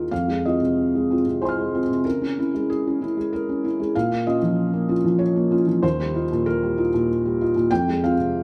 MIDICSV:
0, 0, Header, 1, 2, 480
1, 0, Start_track
1, 0, Key_signature, -4, "minor"
1, 0, Tempo, 643777
1, 82, Time_signature, 3, 2, 24, 8
1, 1998, Tempo, 626959
1, 6401, End_track
2, 0, Start_track
2, 0, Title_t, "Felt piano"
2, 0, Program_c, 0, 0
2, 0, Control_c, 0, 64, 127
2, 0, Note_on_c, 0, 39, 37
2, 0, Note_on_c, 0, 63, 27
2, 0, Note_on_c, 0, 65, 30
2, 0, Note_on_c, 0, 67, 41
2, 0, Note_on_c, 0, 70, 47
2, 85, Note_on_c, 0, 41, 39
2, 85, Note_on_c, 0, 77, 58
2, 88, Note_off_c, 0, 70, 0
2, 89, Note_off_c, 0, 65, 0
2, 93, Control_c, 0, 64, 0
2, 97, Note_off_c, 0, 63, 0
2, 97, Note_off_c, 0, 67, 0
2, 101, Note_off_c, 0, 39, 0
2, 207, Control_c, 0, 64, 127
2, 209, Note_on_c, 0, 56, 33
2, 331, Note_off_c, 0, 77, 0
2, 339, Note_on_c, 0, 75, 55
2, 341, Note_on_c, 0, 60, 28
2, 343, Note_on_c, 0, 65, 31
2, 405, Note_off_c, 0, 56, 0
2, 446, Note_off_c, 0, 60, 0
2, 447, Note_off_c, 0, 65, 0
2, 459, Note_on_c, 0, 48, 32
2, 708, Note_on_c, 0, 56, 30
2, 825, Note_on_c, 0, 60, 30
2, 831, Note_on_c, 0, 65, 31
2, 841, Note_off_c, 0, 48, 0
2, 892, Note_off_c, 0, 56, 0
2, 928, Note_off_c, 0, 60, 0
2, 931, Note_off_c, 0, 65, 0
2, 947, Note_on_c, 0, 48, 32
2, 1056, Note_on_c, 0, 72, 51
2, 1057, Note_off_c, 0, 75, 0
2, 1062, Note_on_c, 0, 80, 26
2, 1084, Note_on_c, 0, 84, 25
2, 1108, Note_on_c, 0, 89, 26
2, 1176, Note_on_c, 0, 56, 30
2, 1301, Note_on_c, 0, 60, 32
2, 1303, Note_on_c, 0, 65, 33
2, 1320, Note_off_c, 0, 48, 0
2, 1363, Note_off_c, 0, 56, 0
2, 1402, Note_off_c, 0, 60, 0
2, 1403, Note_off_c, 0, 65, 0
2, 1419, Note_on_c, 0, 48, 31
2, 1497, Note_off_c, 0, 41, 0
2, 1501, Note_off_c, 0, 80, 0
2, 1511, Note_off_c, 0, 84, 0
2, 1524, Note_off_c, 0, 89, 0
2, 1526, Note_on_c, 0, 70, 58
2, 1527, Note_off_c, 0, 72, 0
2, 1531, Note_off_c, 0, 48, 0
2, 1532, Note_on_c, 0, 49, 39
2, 1537, Control_c, 0, 64, 0
2, 1653, Note_on_c, 0, 61, 33
2, 1656, Control_c, 0, 64, 127
2, 1767, Note_off_c, 0, 61, 0
2, 1778, Note_on_c, 0, 61, 31
2, 1781, Note_on_c, 0, 64, 33
2, 1877, Note_off_c, 0, 61, 0
2, 1879, Note_off_c, 0, 64, 0
2, 1897, Note_on_c, 0, 56, 31
2, 1999, Note_off_c, 0, 70, 0
2, 2011, Note_on_c, 0, 68, 59
2, 2146, Note_on_c, 0, 61, 31
2, 2240, Note_off_c, 0, 61, 0
2, 2252, Note_on_c, 0, 61, 29
2, 2258, Note_on_c, 0, 64, 32
2, 2274, Note_off_c, 0, 56, 0
2, 2356, Note_off_c, 0, 61, 0
2, 2359, Note_off_c, 0, 64, 0
2, 2374, Note_on_c, 0, 56, 32
2, 2488, Note_off_c, 0, 68, 0
2, 2494, Note_on_c, 0, 70, 58
2, 2619, Note_on_c, 0, 61, 32
2, 2725, Note_off_c, 0, 61, 0
2, 2736, Note_on_c, 0, 61, 36
2, 2739, Note_on_c, 0, 64, 35
2, 2752, Note_off_c, 0, 56, 0
2, 2838, Note_off_c, 0, 61, 0
2, 2840, Note_off_c, 0, 64, 0
2, 2853, Note_on_c, 0, 56, 34
2, 2936, Note_off_c, 0, 49, 0
2, 2968, Note_off_c, 0, 56, 0
2, 2969, Note_off_c, 0, 70, 0
2, 2974, Note_on_c, 0, 77, 70
2, 2975, Control_c, 0, 64, 0
2, 2978, Note_on_c, 0, 46, 45
2, 3084, Control_c, 0, 64, 127
2, 3096, Note_on_c, 0, 58, 36
2, 3208, Note_off_c, 0, 77, 0
2, 3214, Note_on_c, 0, 75, 64
2, 3219, Note_on_c, 0, 61, 33
2, 3219, Note_on_c, 0, 65, 36
2, 3280, Note_off_c, 0, 58, 0
2, 3318, Note_off_c, 0, 61, 0
2, 3318, Note_off_c, 0, 65, 0
2, 3335, Note_on_c, 0, 53, 37
2, 3570, Note_on_c, 0, 58, 39
2, 3689, Note_on_c, 0, 61, 34
2, 3689, Note_on_c, 0, 65, 36
2, 3707, Note_off_c, 0, 53, 0
2, 3755, Note_off_c, 0, 58, 0
2, 3792, Note_off_c, 0, 61, 0
2, 3792, Note_off_c, 0, 65, 0
2, 3808, Note_on_c, 0, 53, 38
2, 3917, Note_on_c, 0, 73, 64
2, 3924, Note_off_c, 0, 75, 0
2, 4050, Note_on_c, 0, 58, 38
2, 4163, Note_on_c, 0, 61, 37
2, 4171, Note_on_c, 0, 65, 41
2, 4193, Note_off_c, 0, 53, 0
2, 4241, Note_off_c, 0, 58, 0
2, 4273, Note_off_c, 0, 61, 0
2, 4277, Note_off_c, 0, 65, 0
2, 4287, Note_on_c, 0, 53, 39
2, 4384, Note_off_c, 0, 46, 0
2, 4406, Note_off_c, 0, 73, 0
2, 4406, Note_on_c, 0, 39, 51
2, 4406, Note_on_c, 0, 72, 69
2, 4407, Note_off_c, 0, 53, 0
2, 4421, Control_c, 0, 64, 0
2, 4527, Control_c, 0, 64, 127
2, 4535, Note_on_c, 0, 55, 41
2, 4652, Note_on_c, 0, 63, 38
2, 4659, Note_on_c, 0, 65, 40
2, 4723, Note_off_c, 0, 55, 0
2, 4757, Note_off_c, 0, 63, 0
2, 4762, Note_off_c, 0, 65, 0
2, 4784, Note_on_c, 0, 46, 36
2, 4886, Note_off_c, 0, 72, 0
2, 4893, Note_on_c, 0, 70, 69
2, 5022, Note_on_c, 0, 55, 39
2, 5133, Note_on_c, 0, 63, 37
2, 5134, Note_on_c, 0, 65, 40
2, 5156, Note_off_c, 0, 46, 0
2, 5204, Note_off_c, 0, 55, 0
2, 5236, Note_off_c, 0, 63, 0
2, 5237, Note_off_c, 0, 65, 0
2, 5257, Note_on_c, 0, 46, 38
2, 5367, Note_off_c, 0, 70, 0
2, 5501, Note_on_c, 0, 55, 39
2, 5620, Note_on_c, 0, 65, 44
2, 5621, Note_on_c, 0, 63, 40
2, 5634, Note_off_c, 0, 46, 0
2, 5684, Note_off_c, 0, 55, 0
2, 5720, Note_off_c, 0, 63, 0
2, 5720, Note_off_c, 0, 65, 0
2, 5734, Note_on_c, 0, 46, 42
2, 5811, Note_off_c, 0, 39, 0
2, 5846, Note_on_c, 0, 79, 83
2, 5848, Note_off_c, 0, 46, 0
2, 5851, Note_on_c, 0, 41, 54
2, 5854, Control_c, 0, 64, 0
2, 5973, Control_c, 0, 64, 127
2, 5978, Note_on_c, 0, 56, 43
2, 6083, Note_off_c, 0, 79, 0
2, 6100, Note_on_c, 0, 77, 64
2, 6103, Note_on_c, 0, 60, 34
2, 6110, Note_on_c, 0, 65, 39
2, 6161, Note_off_c, 0, 56, 0
2, 6201, Note_off_c, 0, 60, 0
2, 6204, Note_off_c, 0, 65, 0
2, 6214, Note_on_c, 0, 48, 38
2, 6401, Note_off_c, 0, 41, 0
2, 6401, Note_off_c, 0, 48, 0
2, 6401, Note_off_c, 0, 77, 0
2, 6401, End_track
0, 0, End_of_file